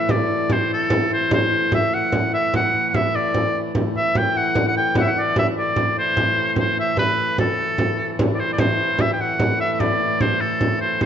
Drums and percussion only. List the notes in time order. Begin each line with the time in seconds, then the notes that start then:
0.09 frame drum
0.30 frame drum
0.50 frame drum
0.90 frame drum
1.31 frame drum
1.72 frame drum
2.12 frame drum
2.54 frame drum
2.74 frame drum
2.94 frame drum
3.16 frame drum
3.34 frame drum
3.75 frame drum
3.95 frame drum
4.15 frame drum
4.55 frame drum
4.95 frame drum
5.16 frame drum
5.36 frame drum
5.76 frame drum
6.17 frame drum
6.37 frame drum
6.56 frame drum
6.97 frame drum
7.38 frame drum
7.59 frame drum
7.78 frame drum
8.19 frame drum
8.39 frame drum
8.58 frame drum
8.79 frame drum
8.99 frame drum
9.40 frame drum
9.80 frame drum
10.00 frame drum
10.20 frame drum
10.61 frame drum
11.01 frame drum